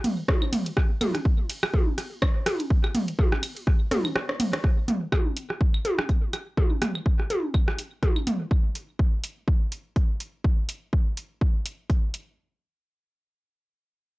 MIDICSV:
0, 0, Header, 1, 2, 480
1, 0, Start_track
1, 0, Tempo, 483871
1, 762, Time_signature, 4, 2, 24, 8
1, 14071, End_track
2, 0, Start_track
2, 0, Title_t, "Drums"
2, 42, Note_on_c, 9, 45, 81
2, 42, Note_on_c, 9, 46, 93
2, 42, Note_on_c, 9, 51, 88
2, 141, Note_off_c, 9, 45, 0
2, 141, Note_off_c, 9, 46, 0
2, 141, Note_off_c, 9, 51, 0
2, 281, Note_on_c, 9, 36, 104
2, 281, Note_on_c, 9, 37, 39
2, 281, Note_on_c, 9, 48, 77
2, 282, Note_off_c, 9, 37, 0
2, 282, Note_on_c, 9, 37, 100
2, 380, Note_off_c, 9, 36, 0
2, 380, Note_off_c, 9, 48, 0
2, 381, Note_off_c, 9, 37, 0
2, 416, Note_on_c, 9, 75, 73
2, 515, Note_off_c, 9, 75, 0
2, 521, Note_on_c, 9, 45, 78
2, 522, Note_on_c, 9, 46, 92
2, 522, Note_on_c, 9, 51, 88
2, 620, Note_off_c, 9, 45, 0
2, 621, Note_off_c, 9, 46, 0
2, 621, Note_off_c, 9, 51, 0
2, 657, Note_on_c, 9, 42, 43
2, 756, Note_off_c, 9, 42, 0
2, 761, Note_on_c, 9, 36, 118
2, 761, Note_on_c, 9, 37, 85
2, 860, Note_off_c, 9, 36, 0
2, 861, Note_off_c, 9, 37, 0
2, 1002, Note_on_c, 9, 45, 80
2, 1002, Note_on_c, 9, 46, 88
2, 1002, Note_on_c, 9, 48, 75
2, 1002, Note_on_c, 9, 51, 88
2, 1002, Note_on_c, 9, 75, 70
2, 1101, Note_off_c, 9, 45, 0
2, 1101, Note_off_c, 9, 48, 0
2, 1101, Note_off_c, 9, 75, 0
2, 1102, Note_off_c, 9, 46, 0
2, 1102, Note_off_c, 9, 51, 0
2, 1136, Note_on_c, 9, 37, 40
2, 1137, Note_on_c, 9, 42, 35
2, 1235, Note_off_c, 9, 37, 0
2, 1236, Note_off_c, 9, 42, 0
2, 1241, Note_on_c, 9, 36, 107
2, 1340, Note_off_c, 9, 36, 0
2, 1482, Note_on_c, 9, 46, 90
2, 1482, Note_on_c, 9, 51, 93
2, 1582, Note_off_c, 9, 46, 0
2, 1582, Note_off_c, 9, 51, 0
2, 1616, Note_on_c, 9, 37, 85
2, 1616, Note_on_c, 9, 75, 72
2, 1715, Note_off_c, 9, 37, 0
2, 1715, Note_off_c, 9, 75, 0
2, 1722, Note_on_c, 9, 36, 110
2, 1722, Note_on_c, 9, 48, 76
2, 1821, Note_off_c, 9, 36, 0
2, 1821, Note_off_c, 9, 48, 0
2, 1962, Note_on_c, 9, 37, 40
2, 1963, Note_on_c, 9, 46, 89
2, 1963, Note_on_c, 9, 51, 89
2, 2061, Note_off_c, 9, 37, 0
2, 2062, Note_off_c, 9, 46, 0
2, 2062, Note_off_c, 9, 51, 0
2, 2202, Note_on_c, 9, 36, 103
2, 2202, Note_on_c, 9, 75, 71
2, 2203, Note_on_c, 9, 37, 102
2, 2301, Note_off_c, 9, 36, 0
2, 2301, Note_off_c, 9, 75, 0
2, 2302, Note_off_c, 9, 37, 0
2, 2442, Note_on_c, 9, 37, 85
2, 2442, Note_on_c, 9, 48, 76
2, 2443, Note_on_c, 9, 46, 92
2, 2443, Note_on_c, 9, 51, 89
2, 2541, Note_off_c, 9, 37, 0
2, 2541, Note_off_c, 9, 48, 0
2, 2542, Note_off_c, 9, 46, 0
2, 2542, Note_off_c, 9, 51, 0
2, 2577, Note_on_c, 9, 42, 44
2, 2677, Note_off_c, 9, 42, 0
2, 2682, Note_on_c, 9, 36, 119
2, 2781, Note_off_c, 9, 36, 0
2, 2817, Note_on_c, 9, 37, 45
2, 2817, Note_on_c, 9, 75, 70
2, 2916, Note_off_c, 9, 37, 0
2, 2916, Note_off_c, 9, 75, 0
2, 2922, Note_on_c, 9, 45, 80
2, 2922, Note_on_c, 9, 46, 91
2, 2922, Note_on_c, 9, 51, 89
2, 3022, Note_off_c, 9, 45, 0
2, 3022, Note_off_c, 9, 46, 0
2, 3022, Note_off_c, 9, 51, 0
2, 3057, Note_on_c, 9, 42, 35
2, 3156, Note_off_c, 9, 42, 0
2, 3162, Note_on_c, 9, 36, 110
2, 3162, Note_on_c, 9, 48, 78
2, 3261, Note_off_c, 9, 36, 0
2, 3261, Note_off_c, 9, 48, 0
2, 3297, Note_on_c, 9, 37, 83
2, 3396, Note_off_c, 9, 37, 0
2, 3402, Note_on_c, 9, 46, 93
2, 3402, Note_on_c, 9, 51, 87
2, 3402, Note_on_c, 9, 75, 72
2, 3501, Note_off_c, 9, 46, 0
2, 3501, Note_off_c, 9, 51, 0
2, 3501, Note_off_c, 9, 75, 0
2, 3537, Note_on_c, 9, 51, 53
2, 3636, Note_off_c, 9, 51, 0
2, 3642, Note_on_c, 9, 36, 119
2, 3643, Note_on_c, 9, 37, 42
2, 3741, Note_off_c, 9, 36, 0
2, 3742, Note_off_c, 9, 37, 0
2, 3882, Note_on_c, 9, 37, 62
2, 3882, Note_on_c, 9, 45, 89
2, 3882, Note_on_c, 9, 46, 89
2, 3882, Note_on_c, 9, 48, 81
2, 3882, Note_on_c, 9, 51, 87
2, 3981, Note_off_c, 9, 45, 0
2, 3981, Note_off_c, 9, 48, 0
2, 3982, Note_off_c, 9, 37, 0
2, 3982, Note_off_c, 9, 46, 0
2, 3982, Note_off_c, 9, 51, 0
2, 4017, Note_on_c, 9, 75, 72
2, 4116, Note_off_c, 9, 75, 0
2, 4122, Note_on_c, 9, 37, 83
2, 4123, Note_off_c, 9, 37, 0
2, 4123, Note_on_c, 9, 37, 80
2, 4222, Note_off_c, 9, 37, 0
2, 4257, Note_on_c, 9, 37, 75
2, 4356, Note_off_c, 9, 37, 0
2, 4362, Note_on_c, 9, 45, 82
2, 4363, Note_on_c, 9, 46, 94
2, 4363, Note_on_c, 9, 51, 89
2, 4461, Note_off_c, 9, 45, 0
2, 4462, Note_off_c, 9, 46, 0
2, 4462, Note_off_c, 9, 51, 0
2, 4497, Note_on_c, 9, 37, 90
2, 4497, Note_on_c, 9, 42, 45
2, 4596, Note_off_c, 9, 37, 0
2, 4596, Note_off_c, 9, 42, 0
2, 4602, Note_on_c, 9, 36, 121
2, 4602, Note_on_c, 9, 37, 42
2, 4701, Note_off_c, 9, 36, 0
2, 4702, Note_off_c, 9, 37, 0
2, 4842, Note_on_c, 9, 45, 83
2, 4843, Note_on_c, 9, 46, 94
2, 4941, Note_off_c, 9, 45, 0
2, 4942, Note_off_c, 9, 46, 0
2, 5082, Note_on_c, 9, 36, 111
2, 5082, Note_on_c, 9, 37, 79
2, 5082, Note_on_c, 9, 48, 79
2, 5082, Note_on_c, 9, 75, 65
2, 5181, Note_off_c, 9, 36, 0
2, 5182, Note_off_c, 9, 37, 0
2, 5182, Note_off_c, 9, 48, 0
2, 5182, Note_off_c, 9, 75, 0
2, 5322, Note_on_c, 9, 46, 91
2, 5422, Note_off_c, 9, 46, 0
2, 5457, Note_on_c, 9, 37, 43
2, 5556, Note_off_c, 9, 37, 0
2, 5562, Note_on_c, 9, 36, 119
2, 5661, Note_off_c, 9, 36, 0
2, 5697, Note_on_c, 9, 75, 65
2, 5796, Note_off_c, 9, 75, 0
2, 5802, Note_on_c, 9, 46, 88
2, 5802, Note_on_c, 9, 48, 77
2, 5902, Note_off_c, 9, 46, 0
2, 5902, Note_off_c, 9, 48, 0
2, 5937, Note_on_c, 9, 37, 86
2, 6036, Note_off_c, 9, 37, 0
2, 6041, Note_on_c, 9, 36, 101
2, 6042, Note_on_c, 9, 46, 37
2, 6141, Note_off_c, 9, 36, 0
2, 6141, Note_off_c, 9, 46, 0
2, 6282, Note_on_c, 9, 46, 91
2, 6283, Note_on_c, 9, 37, 41
2, 6283, Note_on_c, 9, 75, 67
2, 6381, Note_off_c, 9, 46, 0
2, 6382, Note_off_c, 9, 37, 0
2, 6382, Note_off_c, 9, 75, 0
2, 6522, Note_on_c, 9, 36, 122
2, 6523, Note_on_c, 9, 48, 82
2, 6621, Note_off_c, 9, 36, 0
2, 6622, Note_off_c, 9, 48, 0
2, 6762, Note_on_c, 9, 46, 91
2, 6763, Note_on_c, 9, 37, 80
2, 6763, Note_on_c, 9, 45, 80
2, 6862, Note_off_c, 9, 37, 0
2, 6862, Note_off_c, 9, 45, 0
2, 6862, Note_off_c, 9, 46, 0
2, 6898, Note_on_c, 9, 75, 63
2, 6997, Note_off_c, 9, 75, 0
2, 7001, Note_on_c, 9, 36, 113
2, 7100, Note_off_c, 9, 36, 0
2, 7138, Note_on_c, 9, 37, 39
2, 7237, Note_off_c, 9, 37, 0
2, 7243, Note_on_c, 9, 46, 94
2, 7243, Note_on_c, 9, 48, 77
2, 7342, Note_off_c, 9, 46, 0
2, 7342, Note_off_c, 9, 48, 0
2, 7481, Note_on_c, 9, 36, 117
2, 7483, Note_on_c, 9, 75, 64
2, 7580, Note_off_c, 9, 36, 0
2, 7582, Note_off_c, 9, 75, 0
2, 7617, Note_on_c, 9, 37, 80
2, 7716, Note_off_c, 9, 37, 0
2, 7723, Note_on_c, 9, 46, 92
2, 7822, Note_off_c, 9, 46, 0
2, 7961, Note_on_c, 9, 36, 105
2, 7963, Note_on_c, 9, 37, 39
2, 7963, Note_on_c, 9, 46, 36
2, 7963, Note_on_c, 9, 48, 80
2, 8060, Note_off_c, 9, 36, 0
2, 8062, Note_off_c, 9, 37, 0
2, 8062, Note_off_c, 9, 46, 0
2, 8062, Note_off_c, 9, 48, 0
2, 8097, Note_on_c, 9, 75, 64
2, 8196, Note_off_c, 9, 75, 0
2, 8202, Note_on_c, 9, 46, 94
2, 8203, Note_on_c, 9, 45, 83
2, 8302, Note_off_c, 9, 45, 0
2, 8302, Note_off_c, 9, 46, 0
2, 8441, Note_on_c, 9, 36, 127
2, 8540, Note_off_c, 9, 36, 0
2, 8682, Note_on_c, 9, 46, 96
2, 8782, Note_off_c, 9, 46, 0
2, 8921, Note_on_c, 9, 36, 112
2, 9020, Note_off_c, 9, 36, 0
2, 9162, Note_on_c, 9, 46, 96
2, 9261, Note_off_c, 9, 46, 0
2, 9401, Note_on_c, 9, 36, 118
2, 9500, Note_off_c, 9, 36, 0
2, 9642, Note_on_c, 9, 46, 93
2, 9741, Note_off_c, 9, 46, 0
2, 9881, Note_on_c, 9, 36, 106
2, 9882, Note_on_c, 9, 46, 37
2, 9980, Note_off_c, 9, 36, 0
2, 9981, Note_off_c, 9, 46, 0
2, 10122, Note_on_c, 9, 46, 97
2, 10221, Note_off_c, 9, 46, 0
2, 10361, Note_on_c, 9, 36, 120
2, 10460, Note_off_c, 9, 36, 0
2, 10602, Note_on_c, 9, 46, 92
2, 10701, Note_off_c, 9, 46, 0
2, 10841, Note_on_c, 9, 36, 113
2, 10940, Note_off_c, 9, 36, 0
2, 11082, Note_on_c, 9, 46, 96
2, 11182, Note_off_c, 9, 46, 0
2, 11321, Note_on_c, 9, 36, 114
2, 11420, Note_off_c, 9, 36, 0
2, 11562, Note_on_c, 9, 46, 96
2, 11662, Note_off_c, 9, 46, 0
2, 11801, Note_on_c, 9, 36, 107
2, 11803, Note_on_c, 9, 46, 35
2, 11901, Note_off_c, 9, 36, 0
2, 11902, Note_off_c, 9, 46, 0
2, 12042, Note_on_c, 9, 46, 89
2, 12141, Note_off_c, 9, 46, 0
2, 14071, End_track
0, 0, End_of_file